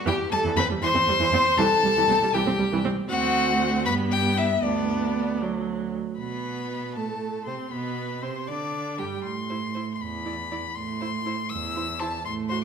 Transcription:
0.06 0.12 E2 loud
0.06 0.11 E3 loud
0.06 0.31 G4 medium
0.06 0.15 G5 loud
0.32 0.37 E2 medium
0.32 0.38 G3 medium
0.32 0.57 A4 loud
0.32 0.40 A5 loud
0.44 0.49 E2 loud
0.44 0.51 E3 loud
0.56 0.62 E2 medium
0.56 0.63 C4 medium
0.56 0.67 B4 loud
0.56 0.64 B5 loud
0.69 0.74 E2 medium
0.69 0.76 G3 medium
0.81 0.86 E2 loud
0.81 0.88 E3 loud
0.81 1.59 C5 loud
0.81 1.60 C6 loud
0.94 0.99 E2 medium
0.94 1.00 C4 medium
1.07 1.12 E2 medium
1.07 1.13 G3 medium
1.19 1.25 E2 loud
1.19 1.25 E3 loud
1.32 1.38 E2 medium
1.32 1.38 C4 medium
1.57 1.63 C2 loud
1.57 1.64 E3 loud
1.57 2.36 A4 loud
1.57 2.35 A5 loud
1.84 1.89 C2 medium
1.84 1.89 G3 medium
1.96 2.01 C2 loud
1.96 2.02 E3 medium
2.08 2.14 C2 medium
2.08 2.15 C4 medium
2.21 2.26 C2 medium
2.21 2.27 G3 medium
2.34 2.39 C2 loud
2.34 2.39 E3 loud
2.34 2.85 G4 loud
2.34 2.85 G5 loud
2.46 2.52 C2 medium
2.46 2.52 C4 medium
2.59 2.65 C2 medium
2.59 2.64 G3 medium
2.72 2.77 C2 loud
2.72 2.77 E3 loud
2.84 2.91 C2 medium
2.84 2.90 C4 medium
3.09 3.89 D2 medium
3.09 3.87 C4 medium
3.09 3.82 F#4 loud
3.09 3.82 F#5 loud
3.85 4.62 G2 medium
3.85 4.63 B3 medium
3.85 3.93 B4 loud
3.85 3.94 B5 loud
4.11 4.36 G4 medium
4.11 4.39 G5 loud
4.37 4.45 E4 medium
4.37 4.64 E5 loud
4.63 5.96 D2 medium
4.63 5.43 B3 medium
4.63 5.40 D4 medium
4.63 5.41 D5 medium
5.42 5.99 F#3 medium
6.18 6.97 B2 medium
6.18 6.98 B3 medium
6.18 6.97 B4 medium
6.18 6.91 B5 medium
6.95 7.46 A2 medium
6.95 7.49 A3 medium
6.95 7.46 A4 medium
6.95 7.44 A5 medium
7.45 7.54 C3 medium
7.45 7.71 C4 medium
7.45 7.55 C5 medium
7.45 7.73 C6 medium
7.71 8.24 B2 medium
7.71 8.22 B3 medium
7.71 8.24 B4 medium
7.71 8.24 B5 medium
8.22 8.50 C3 medium
8.22 8.30 C4 medium
8.22 8.49 C5 medium
8.22 8.49 C6 medium
8.47 9.02 D3 medium
8.47 9.00 D4 medium
8.47 8.98 D5 medium
8.47 9.00 D6 medium
8.98 9.25 G2 medium
8.98 9.25 G3 medium
8.98 9.06 G4 medium
8.98 9.23 G5 medium
9.24 9.89 A2 medium
9.24 9.92 C6 medium
9.49 9.58 E4 medium
9.49 9.57 C5 soft
9.74 9.83 E4 soft
9.74 9.82 C5 medium
9.94 10.03 C6 medium
10.01 10.64 E2 medium
10.01 10.77 B5 medium
10.25 10.33 E4 soft
10.25 10.33 D5 soft
10.51 10.59 E4 medium
10.51 10.59 D5 medium
10.76 11.39 A2 medium
10.76 11.51 C6 medium
11.00 11.09 E4 medium
11.00 11.08 C5 medium
11.25 11.33 E4 medium
11.25 11.34 C5 medium
11.49 12.14 E2 medium
11.49 12.01 E6 medium
11.76 11.84 E4 medium
11.76 11.84 C5 medium
11.99 12.09 E4 medium
11.99 12.07 C5 medium
11.99 12.25 A5 medium
12.25 12.64 A2 medium
12.25 12.33 C6 medium
12.49 12.58 F#4 medium
12.49 12.57 C5 medium
12.49 12.62 C6 loud

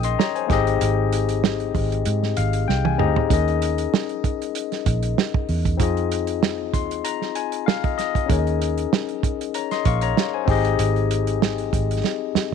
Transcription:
0.00 0.15 A#1 medium
0.00 0.44 C#4 medium
0.00 0.45 D#4 medium
0.00 0.46 G#4 medium
0.00 0.47 A#4 medium
0.00 0.05 D#5 medium
0.00 0.51 G5 medium
0.00 0.52 D#6 medium
0.00 closed hi-hat medium
0.04 0.18 D#5 medium
0.04 0.18 C6 medium
0.19 0.35 C#5 medium
0.19 0.35 A#5 medium
0.19 snare medium
0.35 0.65 C5 medium
0.35 0.65 G#5 medium
0.35 closed hi-hat soft
0.47 0.78 G#1 loud
0.47 0.55 A#3 medium
0.47 2.95 D#4 medium
0.47 2.95 G4 medium
0.47 kick loud
0.47 snare soft
0.47 closed hi-hat medium
0.51 2.96 C4 medium
0.51 2.96 G#4 medium
0.51 2.97 D#5 medium
0.67 closed hi-hat soft
0.81 1.71 G#1 loud
0.81 closed hi-hat medium
1.13 closed hi-hat medium
1.29 closed hi-hat soft
1.44 snare loud
1.60 closed hi-hat soft
1.75 2.02 G#1 medium
1.75 kick medium
1.75 open hi-hat soft
1.92 closed hi-hat soft
2.05 2.34 G#2 loud
2.05 closed hi-hat medium
2.23 snare soft
2.37 2.65 G#1 medium
2.37 2.66 F5 medium
2.37 closed hi-hat medium
2.53 closed hi-hat medium
2.68 2.96 C2 medium
2.68 2.84 G5 medium
2.68 snare soft
2.85 2.98 G#5 medium
2.85 high tom medium
2.98 3.15 D2 medium
2.98 3.30 C4 medium
2.98 3.28 D#4 medium
2.98 3.30 G4 medium
2.98 3.29 G#4 medium
2.98 3.31 D#5 medium
2.98 3.28 A#5 medium
2.98 mid tom medium
3.16 floor tom medium
3.28 3.86 D#2 loud
3.28 5.75 C#4 medium
3.28 5.75 D#4 medium
3.28 5.76 G#4 soft
3.28 kick loud
3.28 closed hi-hat loud
3.32 5.77 A#4 medium
3.32 5.77 D#5 medium
3.48 closed hi-hat soft
3.62 closed hi-hat medium
3.78 closed hi-hat medium
3.94 snare loud
4.09 closed hi-hat soft
4.24 kick medium
4.24 closed hi-hat medium
4.42 closed hi-hat medium
4.55 closed hi-hat medium
4.72 snare soft
4.72 closed hi-hat soft
4.86 5.14 A#1 medium
4.86 kick medium
4.86 closed hi-hat medium
5.03 closed hi-hat medium
5.18 snare medium
5.34 kick loud
5.49 5.80 E2 medium
5.49 open hi-hat soft
5.65 kick medium
5.65 closed hi-hat medium
5.77 6.74 F2 loud
5.77 8.24 C4 medium
5.77 8.25 D#4 medium
5.77 8.26 F4 medium
5.77 8.26 G#4 medium
5.77 kick loud
5.77 closed hi-hat medium
5.83 7.83 D#5 medium
5.97 closed hi-hat soft
6.12 closed hi-hat medium
6.27 closed hi-hat medium
6.43 snare loud
6.74 7.01 D#2 loud
6.74 7.03 C6 medium
6.74 kick medium
6.74 closed hi-hat medium
6.91 closed hi-hat medium
7.04 7.34 A#5 medium
7.04 closed hi-hat loud
7.22 snare soft
7.35 7.65 G#5 medium
7.35 closed hi-hat medium
7.52 closed hi-hat medium
7.66 7.82 F5 medium
7.66 snare loud
7.84 7.96 D#5 medium
7.84 kick loud
7.84 closed hi-hat soft
7.98 8.27 D#5 medium
7.98 snare soft
7.98 closed hi-hat medium
8.15 kick medium
8.15 closed hi-hat medium
8.26 8.85 D#2 loud
8.26 10.42 C#4 medium
8.26 10.43 D#4 medium
8.26 10.43 G#4 medium
8.26 kick loud
8.26 closed hi-hat loud
8.31 10.44 A#4 medium
8.31 8.38 C#5 medium
8.39 9.56 D#5 medium
8.47 closed hi-hat soft
8.62 closed hi-hat medium
8.78 closed hi-hat medium
8.93 snare loud
9.09 closed hi-hat soft
9.23 kick loud
9.23 closed hi-hat medium
9.41 closed hi-hat medium
9.54 9.71 C#5 medium
9.54 9.70 A#5 medium
9.54 closed hi-hat medium
9.71 9.85 D#5 medium
9.71 9.85 C6 medium
9.71 snare soft
9.71 closed hi-hat soft
9.85 10.13 A#1 medium
9.85 10.02 F5 medium
9.85 10.02 C#6 medium
9.85 kick loud
9.85 closed hi-hat medium
10.01 10.32 C#5 medium
10.01 10.32 A#5 medium
10.01 closed hi-hat medium
10.17 snare medium
10.34 10.64 C5 medium
10.34 10.63 G#5 medium
10.45 10.75 G#1 medium
10.45 12.54 C4 medium
10.45 12.54 D#4 medium
10.45 12.54 G4 medium
10.45 kick loud
10.45 open hi-hat medium
10.49 12.54 G#4 medium
10.49 12.54 D#5 loud
10.65 closed hi-hat soft
10.79 11.69 G#1 loud
10.79 closed hi-hat loud
10.96 closed hi-hat soft
11.11 closed hi-hat medium
11.27 closed hi-hat medium
11.42 snare loud
11.58 closed hi-hat soft
11.73 12.01 G#1 medium
11.73 kick medium
11.73 closed hi-hat medium
11.91 closed hi-hat medium
12.04 snare medium
12.35 muted fingered electric bass stroke soft
12.35 snare medium

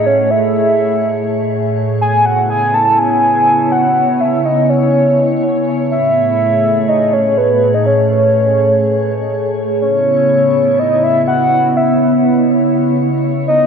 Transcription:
0.00 1.97 A2 medium
0.00 1.97 A3 medium
0.00 1.97 G#4 medium
0.00 9.77 C#5 loud
0.06 0.32 C#5 loud
0.30 1.77 E5 loud
2.01 5.87 C#3 medium
2.01 5.87 B3 medium
2.01 5.87 E4 medium
2.01 2.27 G#5 loud
2.25 2.49 F#5 loud
2.50 2.75 G#5 loud
2.74 3.00 A5 loud
2.98 3.73 G#5 loud
3.72 4.22 F#5 loud
4.21 4.47 E5 loud
4.45 4.71 D#5 medium
4.70 5.43 C#5 medium
5.91 9.77 A2 medium
5.91 9.77 A3 medium
5.91 9.77 G#4 medium
5.91 6.90 E5 loud
6.89 7.15 D#5 loud
7.13 7.39 C#5 loud
7.38 7.76 B4 loud
7.74 7.86 D#5 loud
7.86 9.29 C#5 loud
9.81 13.67 C#3 medium
9.81 13.67 B3 medium
9.81 13.67 E4 medium
9.81 10.81 C#5 medium
9.81 13.67 C#5 loud
10.79 11.05 D#5 loud
11.03 11.27 E5 loud
11.28 11.78 F#5 loud
11.77 12.25 E5 loud
13.47 13.67 D#5 medium

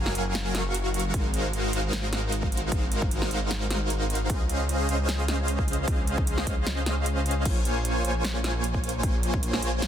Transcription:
0.00 0.13 F#1 loud
0.00 0.13 F#3 medium
0.00 0.13 F#4 medium
0.00 0.13 A#4 medium
0.00 0.13 F5 medium
0.00 0.13 G#5 loud
0.06 snare medium
0.15 0.53 F#1 medium
0.15 0.53 F#3 loud
0.15 0.53 F#4 medium
0.15 0.53 A#4 medium
0.15 0.53 F5 medium
0.15 0.53 G#5 loud
0.15 closed hi-hat medium
0.35 snare loud
0.35 closed hi-hat medium
0.55 1.12 F#1 medium
0.55 1.12 F#3 medium
0.55 1.12 F#4 medium
0.55 1.12 A#4 medium
0.55 1.12 F5 medium
0.55 1.12 C#6 loud
0.55 snare medium
0.55 closed hi-hat medium
0.74 closed hi-hat medium
0.94 closed hi-hat medium
1.00 closed hi-hat medium
1.14 1.71 G#1 loud
1.14 1.71 G#3 medium
1.14 1.71 D#4 medium
1.14 1.71 F#4 medium
1.14 1.71 A#4 medium
1.14 1.71 C5 medium
1.14 1.71 F5 medium
1.14 kick loud
1.14 closed hi-hat medium
1.34 closed hi-hat medium
1.53 closed hi-hat medium
1.73 2.70 G#1 loud
1.73 2.70 G#3 loud
1.73 2.70 D#4 medium
1.73 2.70 F#4 medium
1.73 2.70 A#4 medium
1.73 2.70 C5 medium
1.73 2.70 F5 loud
1.73 closed hi-hat medium
1.93 snare loud
1.93 closed hi-hat medium
2.13 snare medium
2.13 closed hi-hat medium
2.32 closed hi-hat medium
2.43 kick medium
2.52 closed hi-hat soft
2.57 closed hi-hat medium
2.72 3.29 G#1 loud
2.72 3.29 G#3 medium
2.72 3.29 D#4 medium
2.72 3.29 F#4 medium
2.72 3.29 C5 medium
2.72 3.29 F5 loud
2.72 kick loud
2.72 closed hi-hat medium
2.92 closed hi-hat medium
3.02 kick loud
3.11 closed hi-hat medium
3.22 snare medium
3.31 4.28 G#1 medium
3.31 4.28 G#3 loud
3.31 4.28 D#4 medium
3.31 4.28 F#4 medium
3.31 4.28 A#4 medium
3.31 4.28 C5 medium
3.31 4.28 F5 loud
3.31 closed hi-hat medium
3.51 snare loud
3.51 closed hi-hat medium
3.71 snare medium
3.71 closed hi-hat medium
3.90 closed hi-hat medium
4.10 closed hi-hat soft
4.15 closed hi-hat medium
4.30 4.87 C#2 loud
4.30 4.87 C#4 medium
4.30 4.87 G#4 medium
4.30 4.87 C5 medium
4.30 4.87 D#5 medium
4.30 kick loud
4.30 closed hi-hat medium
4.49 closed hi-hat medium
4.69 closed hi-hat medium
4.89 5.86 C#2 loud
4.89 5.85 C#4 loud
4.89 5.85 G#4 medium
4.89 5.85 C5 medium
4.89 5.85 D#5 medium
4.89 5.85 F5 loud
4.89 closed hi-hat medium
5.09 snare loud
5.09 closed hi-hat medium
5.28 snare medium
5.28 closed hi-hat medium
5.48 closed hi-hat medium
5.59 kick medium
5.68 closed hi-hat soft
5.73 closed hi-hat medium
5.88 6.45 C#2 loud
5.88 6.45 C#4 medium
5.88 6.45 G#4 medium
5.88 6.45 C5 medium
5.88 6.45 D#5 medium
5.88 6.45 F5 medium
5.88 kick loud
5.88 closed hi-hat medium
6.07 closed hi-hat medium
6.18 kick loud
6.27 closed hi-hat medium
6.38 snare medium
6.47 7.47 C#2 loud
6.47 7.43 C#4 loud
6.47 7.43 G#4 medium
6.47 7.43 C5 medium
6.47 7.43 D#5 medium
6.47 7.43 F5 loud
6.47 kick medium
6.47 closed hi-hat medium
6.67 snare loud
6.67 closed hi-hat medium
6.86 snare medium
6.86 closed hi-hat medium
7.06 closed hi-hat medium
7.26 closed hi-hat medium
7.31 closed hi-hat medium
7.45 8.03 A#1 loud
7.45 8.03 A#3 medium
7.45 8.03 F4 medium
7.45 8.03 C5 medium
7.45 8.03 C#5 medium
7.45 8.03 G#5 loud
7.45 kick loud
7.45 closed hi-hat medium
7.45 crash medium
7.65 closed hi-hat medium
7.85 closed hi-hat medium
8.05 9.02 A#1 medium
8.05 9.01 A#3 loud
8.05 9.01 F4 medium
8.05 9.01 C5 medium
8.05 9.01 C#5 medium
8.05 9.01 G#5 loud
8.05 closed hi-hat medium
8.24 snare loud
8.24 closed hi-hat medium
8.44 snare medium
8.44 closed hi-hat medium
8.64 closed hi-hat medium
8.74 kick medium
8.84 closed hi-hat medium
8.89 closed hi-hat medium
9.03 9.61 A#1 loud
9.03 9.60 A#3 medium
9.03 9.60 F4 medium
9.03 9.60 C5 medium
9.03 9.60 C#5 medium
9.03 9.60 G#5 medium
9.03 kick loud
9.03 closed hi-hat medium
9.23 closed hi-hat medium
9.34 kick loud
9.43 closed hi-hat medium
9.53 snare medium
9.63 9.87 A#1 medium
9.63 9.87 A#3 loud
9.63 9.87 F4 medium
9.63 9.87 C5 medium
9.63 9.87 C#5 medium
9.63 9.87 G#5 loud
9.63 closed hi-hat medium
9.82 snare loud
9.82 closed hi-hat medium

